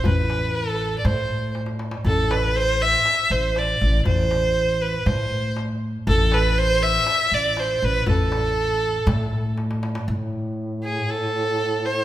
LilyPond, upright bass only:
\new Staff \with { instrumentName = "Upright bass" } { \clef bass \time 4/4 \tempo 4 = 120 a,,2 a,2 | a,,2 r8 a,,4 a,,8 | a,,2 a,2 | a,,2 r8 a,,4 a,,8 |
a,,2 a,2 | a,2 r2 | }